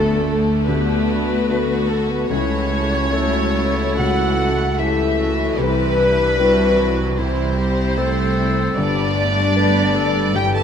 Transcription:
Already playing: D2 D3 A3 B3 D4 F#4 A4 F#5
0.28 A3
0.67 D2 D3 A3 B3 D4 G4 B4
0.94 A3
1.09 B3 F#4
1.21 F#4
1.48 D3 A3 B3 F#4 A4
1.76 F#4
1.88 A3 A4
2.04 A4
2.09 B3 B4
2.27 C#2 C#3 E3 A3 C#4 E4 F#4 C#5
2.57 A3
2.84 E4
3.12 F#3 A3 E4 A4
3.41 E4
3.54 B3
3.97 C#2 C#3 E3 A3 C#4 F#4 F#5
4.25 A3
4.39 A3
4.51 E4
4.78 E3 A3 C#4 E4 G4 A4 E5
5.05 E4
5.18 C#4 F#4
5.32 A4
5.57 C2 C3 G3 C4 E4 G4 B4
5.86 G3
5.98 D4
6.13 E4
6.38 E3 G3 C4 E4 F#4 E5
6.79 F#3
6.92 C5
7.18 C2 C3 E3 G3 C4 E4 C5
7.58 G3 G4
7.71 E4
7.97 G3 A3 C4 E4 A4 C5
8.25 G4
8.77 G1 G2 G3 B3 D4 D5
9.04 A3
9.16 A3
9.30 D4
9.56 G3 A3 B3 D4 G4 B4
9.82 A4
9.96 A4
10.08 B4
10.33 G1 G2 D3 E3 G3 B3 G4 G5
10.55 A4 A5

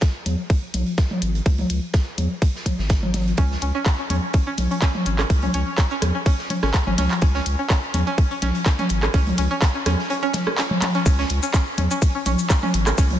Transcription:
0.01 kick, snare, closed hi-hat
0.26 E2, closed hi-hat, low conga
0.50 kick, closed hi-hat
0.74 B1, closed hi-hat, high tom
0.86 closed hi-hat
0.98 kick, snare, closed hi-hat
1.11 high tom
1.22 G#1, closed hi-hat
1.35 closed hi-hat
1.46 C#2, kick, closed hi-hat
1.58 closed hi-hat, high tom
1.70 C#2, closed hi-hat
1.94 kick, snare, closed hi-hat
2.18 E2, closed hi-hat, low conga
2.42 kick, closed hi-hat
2.55 snare
2.66 kick, closed hi-hat, low conga
2.79 G#1, snare
2.89 kick, snare, closed hi-hat
3.03 low conga
3.14 snare, closed hi-hat, open hi-hat, high tom
3.27 closed hi-hat
3.37 C#2 C#4, kick, closed hi-hat
3.51 snare
3.62 C#2 C#4, closed hi-hat
3.75 C#4
3.86 kick, snare, clap, closed hi-hat
3.99 C#4
4.10 E2 C#4, closed hi-hat, low conga
4.33 C#4, kick, closed hi-hat
4.47 C#4
4.58 B1, closed hi-hat, high tom
4.71 C#4, closed hi-hat
4.82 C#4, kick, snare, clap, closed hi-hat
4.95 high tom
5.06 G#1 C#4, closed hi-hat
5.19 C#4, cross-stick, clap, closed hi-hat
5.30 C#2, kick, closed hi-hat
5.42 C#4, closed hi-hat, high tom
5.54 C#2 C#4, closed hi-hat
5.78 C#4, kick, snare, clap, closed hi-hat
5.91 C#4
6.02 E2, cross-stick, closed hi-hat, low conga
6.15 C#4
6.26 C#4, kick, closed hi-hat
6.39 snare
6.50 C#4, closed hi-hat, low conga
6.63 G#1 C#4, cross-stick, snare
6.74 kick, snare, clap, closed hi-hat
6.87 G#1 C#4, low conga
6.98 C#2 C#4, snare, closed hi-hat, open hi-hat, high tom
7.11 clap, closed hi-hat
7.21 C#2 C#4, kick, closed hi-hat
7.34 C#4, snare
7.46 C#2, closed hi-hat
7.59 C#4
7.70 C#4, kick, snare, clap, closed hi-hat
7.94 E2 C#4, closed hi-hat, low conga
8.07 C#4
8.18 kick, closed hi-hat
8.31 C#4, closed hi-hat
8.42 B1 C#4, snare, closed hi-hat, high tom
8.55 closed hi-hat
8.66 C#4, kick, snare, clap, closed hi-hat
8.79 C#4, high tom
8.89 G#1, closed hi-hat
9.02 C#4, cross-stick, clap, closed hi-hat
9.14 C#2 C#4, kick, closed hi-hat
9.26 closed hi-hat, high tom
9.38 C#2 C#4, closed hi-hat
9.51 C#4
9.62 kick, snare, clap, closed hi-hat
9.75 C#4
9.86 E2 C#4, cross-stick, closed hi-hat, low conga
9.99 snare
10.10 C#4, closed hi-hat
10.23 C#4
10.34 snare, closed hi-hat, low conga
10.47 C#4, cross-stick
10.58 C#4, snare, clap, closed hi-hat
10.71 low conga
10.82 C#4, snare, clap, closed hi-hat, open hi-hat, high tom
10.95 C#4, closed hi-hat
11.06 C#2 C#4, kick, closed hi-hat, cabasa
11.19 C#4, snare
11.30 C#2, closed hi-hat
11.43 C#4, cabasa
11.53 C#4, kick, snare, clap, closed hi-hat, cabasa
11.78 E2 C#4, closed hi-hat, low conga
11.91 C#4, cabasa
12.02 kick, closed hi-hat, cabasa
12.15 C#4
12.26 B1 C#4, closed hi-hat, high tom, cabasa
12.38 closed hi-hat, cabasa
12.50 C#4, kick, snare, clap, closed hi-hat, cabasa
12.63 C#4, high tom
12.74 G#1, closed hi-hat
12.86 C#4, cross-stick, clap, closed hi-hat, cabasa
12.98 C#2 C#4, kick, closed hi-hat, cabasa
13.10 closed hi-hat, high tom

